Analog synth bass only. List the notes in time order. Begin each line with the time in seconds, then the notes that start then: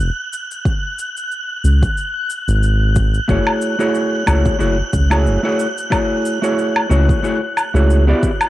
0.00 E1
1.64 C#2
2.48 G#1
3.29 F#1
4.27 C#2
4.60 F#1
4.94 C#2
5.26 F#1
6.91 C#2
7.74 C#2